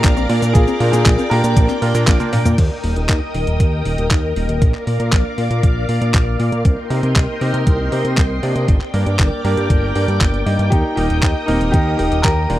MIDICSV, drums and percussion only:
0, 0, Header, 1, 2, 480
1, 0, Start_track
1, 0, Tempo, 508475
1, 518, Time_signature, 4, 2, 24, 8
1, 11887, End_track
2, 0, Start_track
2, 0, Title_t, "Drums"
2, 39, Note_on_c, 9, 36, 103
2, 39, Note_on_c, 9, 39, 112
2, 39, Note_on_c, 9, 42, 81
2, 39, Note_on_c, 9, 69, 54
2, 133, Note_off_c, 9, 36, 0
2, 133, Note_off_c, 9, 39, 0
2, 133, Note_off_c, 9, 42, 0
2, 133, Note_off_c, 9, 69, 0
2, 159, Note_on_c, 9, 69, 31
2, 253, Note_off_c, 9, 69, 0
2, 278, Note_on_c, 9, 46, 115
2, 373, Note_off_c, 9, 46, 0
2, 399, Note_on_c, 9, 42, 52
2, 399, Note_on_c, 9, 69, 60
2, 494, Note_off_c, 9, 42, 0
2, 494, Note_off_c, 9, 69, 0
2, 519, Note_on_c, 9, 36, 121
2, 519, Note_on_c, 9, 42, 84
2, 519, Note_on_c, 9, 69, 48
2, 613, Note_off_c, 9, 42, 0
2, 613, Note_off_c, 9, 69, 0
2, 614, Note_off_c, 9, 36, 0
2, 639, Note_on_c, 9, 42, 39
2, 639, Note_on_c, 9, 69, 30
2, 733, Note_off_c, 9, 42, 0
2, 733, Note_off_c, 9, 69, 0
2, 759, Note_on_c, 9, 46, 110
2, 854, Note_off_c, 9, 46, 0
2, 879, Note_on_c, 9, 42, 57
2, 879, Note_on_c, 9, 69, 58
2, 974, Note_off_c, 9, 42, 0
2, 974, Note_off_c, 9, 69, 0
2, 999, Note_on_c, 9, 36, 105
2, 999, Note_on_c, 9, 39, 118
2, 999, Note_on_c, 9, 42, 84
2, 999, Note_on_c, 9, 69, 49
2, 1093, Note_off_c, 9, 36, 0
2, 1094, Note_off_c, 9, 39, 0
2, 1094, Note_off_c, 9, 42, 0
2, 1094, Note_off_c, 9, 69, 0
2, 1119, Note_on_c, 9, 69, 31
2, 1213, Note_off_c, 9, 69, 0
2, 1239, Note_on_c, 9, 46, 111
2, 1333, Note_off_c, 9, 46, 0
2, 1359, Note_on_c, 9, 42, 60
2, 1359, Note_on_c, 9, 69, 61
2, 1454, Note_off_c, 9, 42, 0
2, 1454, Note_off_c, 9, 69, 0
2, 1479, Note_on_c, 9, 36, 117
2, 1479, Note_on_c, 9, 42, 85
2, 1479, Note_on_c, 9, 69, 47
2, 1573, Note_off_c, 9, 36, 0
2, 1574, Note_off_c, 9, 42, 0
2, 1574, Note_off_c, 9, 69, 0
2, 1599, Note_on_c, 9, 39, 35
2, 1599, Note_on_c, 9, 42, 37
2, 1599, Note_on_c, 9, 69, 30
2, 1694, Note_off_c, 9, 39, 0
2, 1694, Note_off_c, 9, 42, 0
2, 1694, Note_off_c, 9, 69, 0
2, 1718, Note_on_c, 9, 46, 117
2, 1813, Note_off_c, 9, 46, 0
2, 1838, Note_on_c, 9, 42, 54
2, 1838, Note_on_c, 9, 69, 56
2, 1933, Note_off_c, 9, 42, 0
2, 1933, Note_off_c, 9, 69, 0
2, 1958, Note_on_c, 9, 39, 117
2, 1958, Note_on_c, 9, 42, 84
2, 1958, Note_on_c, 9, 69, 49
2, 1959, Note_on_c, 9, 36, 103
2, 2053, Note_off_c, 9, 36, 0
2, 2053, Note_off_c, 9, 39, 0
2, 2053, Note_off_c, 9, 42, 0
2, 2053, Note_off_c, 9, 69, 0
2, 2077, Note_on_c, 9, 42, 38
2, 2077, Note_on_c, 9, 48, 54
2, 2077, Note_on_c, 9, 69, 29
2, 2172, Note_off_c, 9, 42, 0
2, 2172, Note_off_c, 9, 48, 0
2, 2172, Note_off_c, 9, 69, 0
2, 2197, Note_on_c, 9, 46, 118
2, 2197, Note_on_c, 9, 47, 79
2, 2291, Note_off_c, 9, 46, 0
2, 2291, Note_off_c, 9, 47, 0
2, 2318, Note_on_c, 9, 42, 54
2, 2318, Note_on_c, 9, 45, 75
2, 2318, Note_on_c, 9, 69, 56
2, 2412, Note_off_c, 9, 42, 0
2, 2412, Note_off_c, 9, 45, 0
2, 2412, Note_off_c, 9, 69, 0
2, 2437, Note_on_c, 9, 42, 78
2, 2437, Note_on_c, 9, 49, 86
2, 2439, Note_on_c, 9, 36, 116
2, 2532, Note_off_c, 9, 42, 0
2, 2532, Note_off_c, 9, 49, 0
2, 2533, Note_off_c, 9, 36, 0
2, 2677, Note_on_c, 9, 46, 102
2, 2772, Note_off_c, 9, 46, 0
2, 2798, Note_on_c, 9, 42, 52
2, 2892, Note_off_c, 9, 42, 0
2, 2917, Note_on_c, 9, 39, 117
2, 2917, Note_on_c, 9, 42, 80
2, 2918, Note_on_c, 9, 36, 103
2, 3012, Note_off_c, 9, 39, 0
2, 3012, Note_off_c, 9, 42, 0
2, 3013, Note_off_c, 9, 36, 0
2, 3157, Note_on_c, 9, 46, 87
2, 3252, Note_off_c, 9, 46, 0
2, 3277, Note_on_c, 9, 42, 57
2, 3372, Note_off_c, 9, 42, 0
2, 3398, Note_on_c, 9, 36, 117
2, 3398, Note_on_c, 9, 42, 76
2, 3492, Note_off_c, 9, 42, 0
2, 3493, Note_off_c, 9, 36, 0
2, 3638, Note_on_c, 9, 46, 106
2, 3733, Note_off_c, 9, 46, 0
2, 3759, Note_on_c, 9, 42, 50
2, 3853, Note_off_c, 9, 42, 0
2, 3878, Note_on_c, 9, 36, 102
2, 3878, Note_on_c, 9, 39, 109
2, 3878, Note_on_c, 9, 42, 80
2, 3972, Note_off_c, 9, 36, 0
2, 3973, Note_off_c, 9, 39, 0
2, 3973, Note_off_c, 9, 42, 0
2, 4118, Note_on_c, 9, 46, 90
2, 4213, Note_off_c, 9, 46, 0
2, 4238, Note_on_c, 9, 42, 50
2, 4332, Note_off_c, 9, 42, 0
2, 4358, Note_on_c, 9, 36, 122
2, 4358, Note_on_c, 9, 42, 74
2, 4452, Note_off_c, 9, 36, 0
2, 4453, Note_off_c, 9, 42, 0
2, 4479, Note_on_c, 9, 39, 38
2, 4573, Note_off_c, 9, 39, 0
2, 4598, Note_on_c, 9, 46, 100
2, 4693, Note_off_c, 9, 46, 0
2, 4718, Note_on_c, 9, 42, 51
2, 4813, Note_off_c, 9, 42, 0
2, 4838, Note_on_c, 9, 36, 111
2, 4838, Note_on_c, 9, 39, 120
2, 4838, Note_on_c, 9, 42, 77
2, 4932, Note_off_c, 9, 36, 0
2, 4933, Note_off_c, 9, 39, 0
2, 4933, Note_off_c, 9, 42, 0
2, 5078, Note_on_c, 9, 46, 84
2, 5172, Note_off_c, 9, 46, 0
2, 5198, Note_on_c, 9, 42, 53
2, 5292, Note_off_c, 9, 42, 0
2, 5318, Note_on_c, 9, 36, 115
2, 5318, Note_on_c, 9, 42, 77
2, 5412, Note_off_c, 9, 36, 0
2, 5412, Note_off_c, 9, 42, 0
2, 5558, Note_on_c, 9, 46, 104
2, 5652, Note_off_c, 9, 46, 0
2, 5679, Note_on_c, 9, 42, 50
2, 5773, Note_off_c, 9, 42, 0
2, 5798, Note_on_c, 9, 36, 111
2, 5798, Note_on_c, 9, 39, 123
2, 5798, Note_on_c, 9, 42, 78
2, 5892, Note_off_c, 9, 36, 0
2, 5892, Note_off_c, 9, 39, 0
2, 5892, Note_off_c, 9, 42, 0
2, 6038, Note_on_c, 9, 46, 87
2, 6132, Note_off_c, 9, 46, 0
2, 6158, Note_on_c, 9, 42, 50
2, 6253, Note_off_c, 9, 42, 0
2, 6278, Note_on_c, 9, 36, 125
2, 6278, Note_on_c, 9, 42, 73
2, 6372, Note_off_c, 9, 36, 0
2, 6372, Note_off_c, 9, 42, 0
2, 6518, Note_on_c, 9, 46, 103
2, 6612, Note_off_c, 9, 46, 0
2, 6638, Note_on_c, 9, 42, 49
2, 6733, Note_off_c, 9, 42, 0
2, 6758, Note_on_c, 9, 36, 105
2, 6758, Note_on_c, 9, 39, 122
2, 6758, Note_on_c, 9, 42, 75
2, 6852, Note_off_c, 9, 39, 0
2, 6852, Note_off_c, 9, 42, 0
2, 6853, Note_off_c, 9, 36, 0
2, 6997, Note_on_c, 9, 46, 87
2, 7092, Note_off_c, 9, 46, 0
2, 7118, Note_on_c, 9, 42, 53
2, 7212, Note_off_c, 9, 42, 0
2, 7238, Note_on_c, 9, 36, 126
2, 7238, Note_on_c, 9, 42, 73
2, 7332, Note_off_c, 9, 42, 0
2, 7333, Note_off_c, 9, 36, 0
2, 7478, Note_on_c, 9, 46, 105
2, 7572, Note_off_c, 9, 46, 0
2, 7597, Note_on_c, 9, 42, 49
2, 7692, Note_off_c, 9, 42, 0
2, 7717, Note_on_c, 9, 39, 117
2, 7717, Note_on_c, 9, 42, 73
2, 7718, Note_on_c, 9, 36, 111
2, 7811, Note_off_c, 9, 39, 0
2, 7811, Note_off_c, 9, 42, 0
2, 7812, Note_off_c, 9, 36, 0
2, 7958, Note_on_c, 9, 46, 88
2, 8052, Note_off_c, 9, 46, 0
2, 8077, Note_on_c, 9, 42, 50
2, 8172, Note_off_c, 9, 42, 0
2, 8197, Note_on_c, 9, 42, 71
2, 8198, Note_on_c, 9, 36, 127
2, 8292, Note_off_c, 9, 36, 0
2, 8292, Note_off_c, 9, 42, 0
2, 8318, Note_on_c, 9, 39, 38
2, 8412, Note_off_c, 9, 39, 0
2, 8437, Note_on_c, 9, 46, 101
2, 8532, Note_off_c, 9, 46, 0
2, 8557, Note_on_c, 9, 42, 49
2, 8652, Note_off_c, 9, 42, 0
2, 8677, Note_on_c, 9, 39, 124
2, 8677, Note_on_c, 9, 42, 72
2, 8678, Note_on_c, 9, 36, 105
2, 8771, Note_off_c, 9, 39, 0
2, 8771, Note_off_c, 9, 42, 0
2, 8772, Note_off_c, 9, 36, 0
2, 8917, Note_on_c, 9, 46, 84
2, 9012, Note_off_c, 9, 46, 0
2, 9038, Note_on_c, 9, 42, 51
2, 9133, Note_off_c, 9, 42, 0
2, 9157, Note_on_c, 9, 42, 74
2, 9158, Note_on_c, 9, 36, 121
2, 9252, Note_off_c, 9, 36, 0
2, 9252, Note_off_c, 9, 42, 0
2, 9397, Note_on_c, 9, 46, 105
2, 9492, Note_off_c, 9, 46, 0
2, 9519, Note_on_c, 9, 42, 49
2, 9613, Note_off_c, 9, 42, 0
2, 9638, Note_on_c, 9, 36, 106
2, 9639, Note_on_c, 9, 39, 119
2, 9639, Note_on_c, 9, 42, 70
2, 9732, Note_off_c, 9, 36, 0
2, 9733, Note_off_c, 9, 39, 0
2, 9733, Note_off_c, 9, 42, 0
2, 9759, Note_on_c, 9, 42, 33
2, 9853, Note_off_c, 9, 42, 0
2, 9879, Note_on_c, 9, 46, 92
2, 9973, Note_off_c, 9, 46, 0
2, 9999, Note_on_c, 9, 42, 47
2, 10093, Note_off_c, 9, 42, 0
2, 10118, Note_on_c, 9, 36, 119
2, 10119, Note_on_c, 9, 42, 69
2, 10212, Note_off_c, 9, 36, 0
2, 10213, Note_off_c, 9, 42, 0
2, 10359, Note_on_c, 9, 46, 102
2, 10453, Note_off_c, 9, 46, 0
2, 10478, Note_on_c, 9, 42, 50
2, 10573, Note_off_c, 9, 42, 0
2, 10598, Note_on_c, 9, 36, 104
2, 10598, Note_on_c, 9, 39, 113
2, 10598, Note_on_c, 9, 42, 72
2, 10692, Note_off_c, 9, 39, 0
2, 10692, Note_off_c, 9, 42, 0
2, 10693, Note_off_c, 9, 36, 0
2, 10838, Note_on_c, 9, 46, 91
2, 10932, Note_off_c, 9, 46, 0
2, 10959, Note_on_c, 9, 42, 51
2, 11053, Note_off_c, 9, 42, 0
2, 11078, Note_on_c, 9, 36, 115
2, 11079, Note_on_c, 9, 42, 73
2, 11173, Note_off_c, 9, 36, 0
2, 11173, Note_off_c, 9, 42, 0
2, 11318, Note_on_c, 9, 46, 105
2, 11413, Note_off_c, 9, 46, 0
2, 11439, Note_on_c, 9, 42, 48
2, 11533, Note_off_c, 9, 42, 0
2, 11559, Note_on_c, 9, 36, 99
2, 11559, Note_on_c, 9, 39, 116
2, 11559, Note_on_c, 9, 42, 75
2, 11653, Note_off_c, 9, 36, 0
2, 11653, Note_off_c, 9, 39, 0
2, 11653, Note_off_c, 9, 42, 0
2, 11798, Note_on_c, 9, 46, 92
2, 11887, Note_off_c, 9, 46, 0
2, 11887, End_track
0, 0, End_of_file